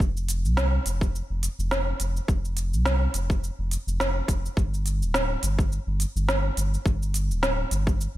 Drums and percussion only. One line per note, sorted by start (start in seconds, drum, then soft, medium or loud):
0.00 kick loud
0.00 shaker soft
0.17 shaker soft
0.29 closed hi-hat medium
0.29 shaker medium
0.45 shaker soft
0.57 snare loud
0.57 shaker soft
0.86 closed hi-hat medium
0.86 shaker medium
1.01 kick medium
1.01 shaker soft
1.15 shaker soft
1.43 closed hi-hat medium
1.43 shaker medium
1.60 shaker soft
1.71 snare loud
1.71 shaker soft
2.00 closed hi-hat medium
2.00 shaker medium
2.17 shaker soft
2.28 kick loud
2.28 shaker soft
2.45 shaker soft
2.57 closed hi-hat medium
2.57 shaker medium
2.74 shaker soft
2.86 snare loud
2.86 shaker soft
3.14 closed hi-hat medium
3.14 shaker medium
3.30 kick loud
3.30 shaker soft
3.44 shaker soft
3.71 closed hi-hat medium
3.71 shaker medium
3.88 shaker soft
4.00 snare loud
4.00 shaker soft
4.28 kick loud
4.28 closed hi-hat medium
4.28 shaker medium
4.46 shaker soft
4.57 kick loud
4.57 shaker soft
4.74 shaker soft
4.86 closed hi-hat medium
4.86 shaker medium
5.02 shaker soft
5.14 snare loud
5.14 shaker soft
5.43 closed hi-hat medium
5.43 shaker medium
5.59 kick loud
5.59 shaker soft
5.72 shaker soft
6.00 closed hi-hat medium
6.00 shaker medium
6.17 shaker soft
6.29 snare loud
6.29 shaker soft
6.57 closed hi-hat medium
6.57 shaker medium
6.74 shaker soft
6.86 kick loud
6.86 shaker soft
7.02 shaker soft
7.14 closed hi-hat medium
7.14 shaker medium
7.31 shaker soft
7.43 snare loud
7.43 shaker soft
7.71 closed hi-hat medium
7.71 shaker medium
7.87 kick loud
7.87 shaker soft
8.01 shaker soft